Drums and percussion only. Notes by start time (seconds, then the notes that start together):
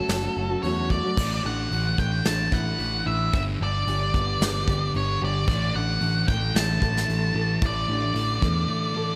0.08 snare, open hi-hat
0.63 open hi-hat
0.90 kick
1.17 kick, crash
1.72 open hi-hat
1.98 kick
2.24 snare, open hi-hat
2.52 kick
2.79 open hi-hat
3.33 kick, open hi-hat
3.88 open hi-hat
4.14 kick
4.41 snare, open hi-hat
4.68 kick
4.94 open hi-hat
5.47 kick, open hi-hat
6.01 open hi-hat
6.28 kick
6.55 snare, open hi-hat
6.82 kick
6.97 snare
7.09 open hi-hat
7.62 kick, open hi-hat
8.15 open hi-hat
8.42 kick